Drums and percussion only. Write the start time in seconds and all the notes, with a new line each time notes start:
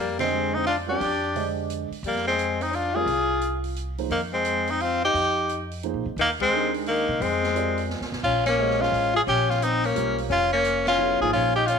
0.19 snare, ride
0.67 open hi-hat
1.01 open hi-hat
1.36 open hi-hat
1.70 closed hi-hat
1.92 open hi-hat
2.04 open hi-hat
2.16 snare
2.27 snare
2.39 closed hi-hat
2.61 open hi-hat
2.73 open hi-hat
3.07 open hi-hat
3.41 closed hi-hat
3.64 open hi-hat
3.76 closed hi-hat
3.98 open hi-hat
4.10 open hi-hat
4.45 closed hi-hat
4.67 open hi-hat
4.80 open hi-hat
5.15 open hi-hat
5.49 closed hi-hat
5.71 open hi-hat
5.83 closed hi-hat
6.18 open hi-hat
6.40 kick, ride
6.74 open hi-hat
6.86 open hi-hat
7.22 open hi-hat
7.43 snare
7.56 closed hi-hat
7.78 open hi-hat
7.90 snare
8.01 snare
8.12 snare
8.24 kick, crash
8.46 snare, ride
8.70 snare
8.83 snare
8.94 open hi-hat
9.28 open hi-hat
9.50 snare
9.62 closed hi-hat
9.84 open hi-hat
9.96 closed hi-hat
10.18 open hi-hat
10.31 open hi-hat
10.64 closed hi-hat
10.87 snare, ride
11.33 open hi-hat
11.68 closed hi-hat